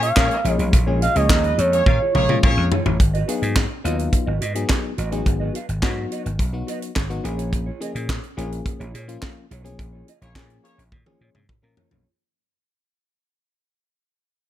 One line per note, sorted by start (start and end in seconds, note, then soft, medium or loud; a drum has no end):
0.00 0.10 A#2 loud
0.00 0.11 A#3 loud
0.00 0.11 C#4 loud
0.00 0.11 G#4 loud
0.00 0.11 C#5 loud
0.00 0.53 F5 loud
0.00 muted clean electric guitar stroke soft
0.00 closed hi-hat medium
0.16 0.28 A#2 loud
0.16 0.35 F3 medium
0.16 0.35 G#3 medium
0.16 0.39 A#3 loud
0.16 0.35 A#3 medium
0.16 0.39 C#4 loud
0.16 0.35 C#4 medium
0.16 0.39 G#4 loud
0.16 0.35 A#4 medium
0.16 0.39 C#5 loud
0.16 kick loud
0.16 snare loud
0.16 clap medium
0.30 muted clean electric guitar stroke soft
0.30 closed hi-hat soft
0.44 0.56 A#1 loud
0.44 0.73 F3 medium
0.44 0.73 G#3 medium
0.44 0.73 A#3 medium
0.44 0.73 C#4 medium
0.44 0.59 F4 medium
0.44 0.58 G#4 loud
0.44 0.73 G#4 medium
0.44 0.57 C#5 medium
0.44 closed hi-hat medium
0.53 0.69 D#5 loud
0.58 0.70 B1 loud
0.58 0.71 F4 medium
0.58 0.72 G#4 medium
0.58 0.73 C#5 medium
0.58 closed hi-hat medium
0.73 1.07 A#1 loud
0.73 muted clean electric guitar stroke soft
0.73 kick loud
0.73 closed hi-hat medium
0.87 1.06 F3 medium
0.87 1.06 G#3 medium
0.87 1.06 A#3 medium
0.87 1.06 C#4 medium
0.87 0.99 F4 medium
0.87 1.06 G#4 medium
0.87 1.01 G#4 medium
0.87 1.02 C#5 medium
1.01 1.17 F4 medium
1.01 1.15 G#4 medium
1.01 1.15 D#5 medium
1.01 1.18 F5 loud
1.01 closed hi-hat medium
1.15 1.27 C#2 loud
1.15 1.90 F3 medium
1.15 1.90 G#3 medium
1.15 1.27 A#3 medium
1.15 1.90 A#3 medium
1.15 1.27 C#4 medium
1.15 1.90 C#4 medium
1.15 1.27 G#4 medium
1.15 1.90 G#4 medium
1.15 1.27 C#5 medium
1.15 1.60 D#5 loud
1.15 muted clean electric guitar stroke soft
1.15 closed hi-hat medium
1.30 1.52 D#2 loud
1.30 1.41 F3 medium
1.30 1.41 A#3 medium
1.30 1.41 C#4 medium
1.30 1.41 A#4 medium
1.30 kick loud
1.30 snare loud
1.30 clap loud
1.43 1.56 D#4 medium
1.43 1.56 B4 medium
1.43 1.56 D#5 loud
1.43 muted clean electric guitar stroke soft
1.43 closed hi-hat soft
1.57 1.80 F2 medium
1.57 1.78 F4 medium
1.57 1.72 G#4 medium
1.57 2.72 C#5 loud
1.57 1.71 C#5 loud
1.57 closed hi-hat medium
1.72 1.84 A#3 medium
1.72 1.84 C#4 loud
1.72 1.84 G#4 loud
1.72 1.84 C#5 loud
1.72 muted clean electric guitar stroke medium
1.72 closed hi-hat medium
1.86 1.98 A#2 medium
1.86 1.98 C#4 medium
1.86 1.98 F4 loud
1.86 1.98 A#4 loud
1.86 1.98 F5 loud
1.86 muted clean electric guitar stroke medium
1.86 kick loud
1.86 high tom medium
2.00 2.13 F4 medium
2.00 2.14 G#4 medium
2.00 2.15 C#5 medium
2.14 2.26 A#1 medium
2.14 2.37 A#3 loud
2.14 2.37 C#4 loud
2.14 2.37 G#4 loud
2.14 2.37 C#5 loud
2.14 muted clean electric guitar stroke soft
2.14 mid tom medium
2.29 2.40 A#2 medium
2.29 2.75 F3 medium
2.29 2.75 G#3 medium
2.29 2.76 A#3 medium
2.29 2.76 C#4 medium
2.29 2.76 F4 loud
2.29 mid tom medium
2.43 2.54 A#2 loud
2.43 2.66 A#3 loud
2.43 2.66 C#4 loud
2.43 2.66 G#4 loud
2.43 2.66 C#5 loud
2.43 muted clean electric guitar stroke soft
2.43 kick loud
2.43 mid tom medium
2.57 2.68 F2 medium
2.57 muted clean electric guitar stroke soft
2.71 2.86 F4 medium
2.71 2.85 G#4 loud
2.71 2.84 C#5 loud
2.71 floor tom loud
2.85 2.97 A1 loud
2.85 2.99 F4 medium
2.85 3.00 G#4 medium
2.85 3.01 C#5 medium
2.85 floor tom loud
3.00 3.22 G#1 loud
3.00 muted clean electric guitar stroke soft
3.00 kick loud
3.00 closed hi-hat medium
3.14 3.26 F#4 medium
3.14 3.27 B4 medium
3.14 3.29 D#5 medium
3.14 closed hi-hat soft
3.28 3.65 F#3 medium
3.28 3.65 B3 medium
3.28 3.65 D#4 medium
3.28 3.44 F#4 medium
3.28 3.66 G#4 loud
3.28 3.42 B4 medium
3.28 3.42 F5 medium
3.28 closed hi-hat medium
3.42 3.64 G#2 medium
3.42 muted clean electric guitar stroke soft
3.42 closed hi-hat soft
3.56 kick loud
3.56 snare loud
3.56 clap loud
3.70 muted clean electric guitar stroke medium
3.84 4.07 D#2 medium
3.84 4.31 F#3 loud
3.84 4.31 B3 loud
3.84 4.31 D#4 loud
3.84 4.31 F4 loud
3.84 4.05 F#4 medium
3.84 3.99 B4 medium
3.84 3.97 D#5 medium
3.84 closed hi-hat medium
3.98 muted clean electric guitar stroke medium
3.98 closed hi-hat medium
4.13 muted clean electric guitar stroke soft
4.13 kick loud
4.13 closed hi-hat medium
4.26 4.38 G#1 loud
4.26 4.39 F#4 medium
4.26 4.40 B4 medium
4.26 4.41 D#5 medium
4.41 4.64 G#2 loud
4.41 4.57 F#4 medium
4.41 4.55 B4 medium
4.41 4.54 D#5 medium
4.41 closed hi-hat medium
4.55 4.92 F#3 medium
4.55 4.93 B3 medium
4.55 4.93 D#4 medium
4.55 4.93 G#4 loud
4.55 muted clean electric guitar stroke soft
4.55 closed hi-hat medium
4.69 kick loud
4.69 snare loud
4.69 clap medium
4.83 muted clean electric guitar stroke soft
4.97 5.20 A1 medium
4.97 5.12 F#4 medium
4.97 5.11 B4 medium
4.97 5.10 D#5 medium
4.97 closed hi-hat medium
5.12 5.58 F#3 medium
5.12 5.59 B3 medium
5.12 5.59 D#4 medium
5.12 5.25 F#4 medium
5.12 5.59 G#4 loud
5.12 5.26 B4 medium
5.12 5.26 D#5 medium
5.12 closed hi-hat medium
5.26 5.48 G#1 loud
5.26 muted clean electric guitar stroke soft
5.26 kick loud
5.26 closed hi-hat medium
5.40 5.53 F#4 medium
5.40 5.54 B4 medium
5.40 5.55 D#5 medium
5.54 5.70 F#4 medium
5.54 5.69 B4 medium
5.54 5.68 F5 medium
5.54 closed hi-hat medium
5.68 5.80 G#1 loud
5.68 muted clean electric guitar stroke soft
5.68 closed hi-hat soft
5.82 6.29 F#3 loud
5.82 6.29 B3 medium
5.82 6.29 D#4 medium
5.82 6.29 F#4 loud
5.82 kick loud
5.82 snare loud
5.82 clap medium
5.97 muted clean electric guitar stroke medium
6.10 6.31 F#4 medium
6.10 6.25 B4 medium
6.10 6.24 D#5 medium
6.10 closed hi-hat medium
6.25 6.37 G#1 medium
6.25 muted clean electric guitar stroke medium
6.25 closed hi-hat soft
6.39 6.62 B1 loud
6.39 kick loud
6.39 closed hi-hat medium
6.53 6.91 F#3 medium
6.53 6.91 B3 medium
6.53 6.91 D#4 medium
6.53 6.91 F#4 loud
6.53 muted clean electric guitar stroke soft
6.67 6.88 F#4 medium
6.67 6.82 B4 loud
6.67 6.81 D#5 loud
6.67 closed hi-hat medium
6.82 muted clean electric guitar stroke medium
6.82 closed hi-hat medium
6.96 7.18 G#1 medium
6.96 kick loud
6.96 snare loud
6.96 clap medium
7.09 7.24 F#3 loud
7.09 7.24 B3 medium
7.09 7.24 D#4 medium
7.09 7.24 F#4 loud
7.09 muted clean electric guitar stroke soft
7.09 closed hi-hat soft
7.24 7.69 A#1 loud
7.24 7.69 F3 medium
7.24 7.69 A#3 medium
7.24 7.70 C#4 medium
7.24 7.39 F4 medium
7.24 7.70 G#4 loud
7.24 7.38 G#4 medium
7.24 7.37 C#5 medium
7.24 closed hi-hat medium
7.38 7.51 F4 medium
7.38 7.52 G#4 medium
7.38 7.53 C#5 medium
7.38 closed hi-hat medium
7.52 muted clean electric guitar stroke soft
7.52 kick loud
7.52 closed hi-hat medium
7.66 7.79 F4 medium
7.66 7.80 G#4 medium
7.66 7.82 C#5 medium
7.80 8.18 F3 medium
7.80 8.18 A#3 medium
7.80 8.18 C#4 medium
7.80 7.97 F4 medium
7.80 8.18 G#4 loud
7.80 7.95 G#4 medium
7.80 7.94 D#5 medium
7.80 closed hi-hat medium
7.95 8.17 A#2 loud
7.95 muted clean electric guitar stroke soft
7.95 closed hi-hat soft
8.09 kick loud
8.09 snare loud
8.09 clap medium
8.23 muted clean electric guitar stroke soft
8.23 closed hi-hat soft
8.37 8.60 A#1 medium
8.37 8.84 F3 loud
8.37 8.84 A#3 loud
8.37 8.84 C#4 medium
8.37 8.58 F4 medium
8.37 8.84 G#4 loud
8.37 8.52 G#4 medium
8.37 8.50 C#5 medium
8.37 closed hi-hat medium
8.51 muted clean electric guitar stroke soft
8.51 closed hi-hat soft
8.66 muted clean electric guitar stroke soft
8.66 kick loud
8.66 closed hi-hat medium
8.80 8.91 A#1 loud
8.80 8.92 F4 medium
8.80 8.94 G#4 medium
8.80 8.94 C#5 medium
8.80 closed hi-hat soft
8.94 9.16 A#2 loud
8.94 9.10 F4 medium
8.94 9.08 G#4 medium
8.94 9.07 C#5 medium
8.94 closed hi-hat medium
9.08 9.45 F3 medium
9.08 9.45 A#3 medium
9.08 9.45 C#4 medium
9.08 9.46 F4 loud
9.08 muted clean electric guitar stroke soft
9.08 closed hi-hat medium
9.22 muted clean electric guitar stroke soft
9.22 kick loud
9.22 snare loud
9.22 clap medium
9.36 muted clean electric guitar stroke soft
9.50 9.73 B1 medium
9.50 9.65 F4 medium
9.50 9.64 G#4 loud
9.50 9.63 C#5 loud
9.50 closed hi-hat medium
9.64 10.11 F3 loud
9.64 10.11 A#3 medium
9.64 10.11 C#4 medium
9.64 9.78 F4 medium
9.64 10.11 G#4 loud
9.64 9.78 G#4 medium
9.64 9.79 C#5 medium
9.64 closed hi-hat medium
9.79 10.01 A#1 loud
9.79 muted clean electric guitar stroke soft
9.79 kick loud
9.79 closed hi-hat medium
9.93 10.06 F4 medium
9.93 10.07 G#4 medium
9.93 10.09 C#5 medium
10.07 10.23 F4 medium
10.07 10.21 G#4 medium
10.07 10.21 D#5 medium
10.07 closed hi-hat medium
10.21 10.33 A#1 loud
10.21 10.33 A#3 medium
10.21 10.34 C#4 medium
10.21 10.33 G#4 medium
10.21 10.34 C#5 medium
10.21 muted clean electric guitar stroke soft
10.21 closed hi-hat soft
10.35 10.82 F3 loud
10.35 10.82 A#3 medium
10.35 10.82 C#4 medium
10.35 10.82 G#4 loud
10.35 kick loud
10.35 snare loud
10.35 clap medium
10.49 muted clean electric guitar stroke medium
10.49 closed hi-hat soft
10.63 10.82 A#3 medium
10.63 10.82 C#4 medium
10.63 10.84 F4 medium
10.63 10.82 G#4 medium
10.63 10.78 G#4 medium
10.63 10.82 C#5 loud
10.63 10.77 C#5 medium
10.63 closed hi-hat medium
10.78 10.89 A#1 medium
10.78 muted clean electric guitar stroke medium
10.78 closed hi-hat soft
10.92 11.03 A#2 loud
10.92 muted clean electric guitar stroke soft
10.92 kick loud
10.92 high tom medium
11.06 11.43 F3 medium
11.06 11.43 A#3 medium
11.06 11.44 C#4 medium
11.06 11.19 F4 medium
11.06 11.44 G#4 medium
11.06 11.20 G#4 medium
11.06 11.21 C#5 medium
11.06 high tom medium
11.20 11.32 A#2 loud
11.20 11.36 F4 medium
11.20 11.35 G#4 medium
11.20 11.33 C#5 medium
11.34 11.46 G#2 medium
11.34 muted clean electric guitar stroke soft
11.34 mid tom medium
11.49 muted clean electric guitar stroke soft
11.49 kick loud
11.49 mid tom medium
11.62 11.74 A#2 medium
11.62 12.05 F3 loud
11.62 12.05 A#3 medium
11.62 12.05 C#4 medium
11.62 12.05 A#4 loud
11.62 muted clean electric guitar stroke soft
11.77 11.91 F4 medium
11.77 11.91 G#4 loud
11.77 11.89 C#5 loud
11.77 floor tom loud
11.91 12.03 B1 medium
11.91 12.08 F4 medium
11.91 12.08 G#4 medium
11.91 12.07 C#5 medium
11.91 floor tom medium